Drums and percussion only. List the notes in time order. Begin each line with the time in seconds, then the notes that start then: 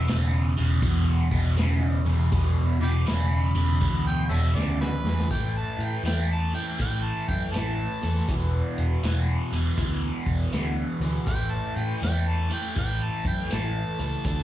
0.08 snare, open hi-hat
0.82 kick, open hi-hat
1.31 kick
1.57 snare, open hi-hat
2.32 kick, open hi-hat
3.06 snare, open hi-hat
3.82 kick, open hi-hat
4.58 snare
4.82 snare
5.07 snare
5.20 snare
5.31 kick, closed hi-hat
5.80 closed hi-hat
6.06 snare, closed hi-hat
6.54 closed hi-hat
6.80 kick, closed hi-hat
7.29 kick, closed hi-hat
7.54 snare, closed hi-hat
8.03 closed hi-hat
8.29 kick, closed hi-hat
8.78 closed hi-hat
9.03 snare, closed hi-hat
9.53 closed hi-hat
9.78 kick, closed hi-hat
10.26 kick, closed hi-hat
10.52 snare, closed hi-hat
11.01 closed hi-hat
11.27 kick, closed hi-hat
11.76 closed hi-hat
12.03 snare, closed hi-hat
12.51 closed hi-hat
12.77 kick, closed hi-hat
13.25 kick, closed hi-hat
13.51 snare, closed hi-hat
13.99 closed hi-hat
14.25 kick, closed hi-hat